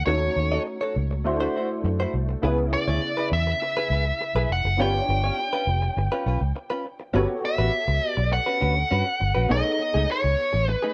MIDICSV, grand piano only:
0, 0, Header, 1, 2, 480
1, 0, Start_track
1, 0, Tempo, 588813
1, 60, Time_signature, 4, 2, 24, 8
1, 8915, End_track
2, 0, Start_track
2, 0, Title_t, "Grand piano"
2, 0, Program_c, 0, 0
2, 0, Control_c, 0, 64, 127
2, 44, Note_on_c, 0, 57, 52
2, 49, Note_on_c, 0, 61, 53
2, 56, Note_on_c, 0, 63, 53
2, 61, Note_on_c, 0, 66, 51
2, 64, Note_on_c, 0, 73, 60
2, 69, Control_c, 0, 64, 0
2, 215, Control_c, 0, 64, 127
2, 994, Note_off_c, 0, 57, 0
2, 997, Note_off_c, 0, 61, 0
2, 1000, Note_off_c, 0, 63, 0
2, 1003, Note_off_c, 0, 66, 0
2, 1004, Note_off_c, 0, 73, 0
2, 1013, Note_on_c, 0, 57, 78
2, 1015, Note_on_c, 0, 62, 69
2, 1022, Note_on_c, 0, 64, 67
2, 1027, Note_on_c, 0, 66, 58
2, 1031, Control_c, 0, 64, 0
2, 1031, Note_on_c, 0, 72, 77
2, 1177, Control_c, 0, 64, 127
2, 1959, Note_off_c, 0, 57, 0
2, 1960, Note_off_c, 0, 62, 0
2, 1963, Note_off_c, 0, 64, 0
2, 1966, Note_off_c, 0, 66, 0
2, 1968, Note_off_c, 0, 72, 0
2, 1973, Note_on_c, 0, 59, 74
2, 1979, Note_on_c, 0, 49, 65
2, 1984, Note_on_c, 0, 64, 70
2, 1987, Note_on_c, 0, 68, 63
2, 1994, Control_c, 0, 64, 0
2, 1994, Note_on_c, 0, 71, 69
2, 2159, Control_c, 0, 64, 127
2, 3866, Note_off_c, 0, 59, 0
2, 3870, Note_off_c, 0, 49, 0
2, 3872, Note_off_c, 0, 64, 0
2, 3873, Note_off_c, 0, 68, 0
2, 3877, Note_off_c, 0, 71, 0
2, 3887, Note_on_c, 0, 59, 60
2, 3892, Note_on_c, 0, 62, 57
2, 3898, Note_on_c, 0, 65, 50
2, 3902, Note_on_c, 0, 67, 53
2, 3908, Note_on_c, 0, 73, 70
2, 3914, Control_c, 0, 64, 0
2, 4045, Control_c, 0, 64, 127
2, 5783, Note_off_c, 0, 59, 0
2, 5786, Note_off_c, 0, 62, 0
2, 5789, Note_off_c, 0, 65, 0
2, 5791, Note_off_c, 0, 67, 0
2, 5794, Note_off_c, 0, 73, 0
2, 5814, Note_on_c, 0, 59, 72
2, 5818, Note_on_c, 0, 66, 72
2, 5825, Note_on_c, 0, 67, 61
2, 5829, Note_on_c, 0, 69, 68
2, 5833, Note_on_c, 0, 73, 80
2, 5837, Control_c, 0, 64, 0
2, 5976, Control_c, 0, 64, 127
2, 7706, Note_off_c, 0, 59, 0
2, 7709, Note_off_c, 0, 66, 0
2, 7712, Note_off_c, 0, 67, 0
2, 7714, Note_off_c, 0, 69, 0
2, 7716, Note_off_c, 0, 73, 0
2, 7731, Note_on_c, 0, 59, 54
2, 7736, Note_on_c, 0, 63, 55
2, 7741, Note_on_c, 0, 68, 49
2, 7744, Note_on_c, 0, 69, 55
2, 7750, Note_on_c, 0, 73, 63
2, 7753, Control_c, 0, 64, 0
2, 7905, Control_c, 0, 64, 127
2, 8915, Note_off_c, 0, 59, 0
2, 8915, Note_off_c, 0, 63, 0
2, 8915, Note_off_c, 0, 68, 0
2, 8915, Note_off_c, 0, 69, 0
2, 8915, Note_off_c, 0, 73, 0
2, 8915, End_track
0, 0, End_of_file